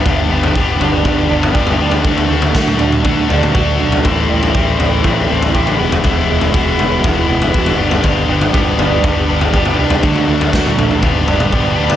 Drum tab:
SD |----------------|----o-----------|----------------|----------------|
T2 |----------------|-----o-o---o----|----------------|----------------|
FT |o--o--o-o--o-o-o|oo-o--o-o-oo---o|o--o--o-o--o-o-o|o--o--o-o--o-o-o|
BD |o---o---o---o---|o---o---o---o---|o---o---o---o---|o---o---o---o---|

SD |----------------|----o-----------|
T2 |----------------|-----o-o---o----|
FT |o--o--o-o--o-o-o|oo-o--o-o-oo---o|
BD |o---o---o---o---|o---o---o---o---|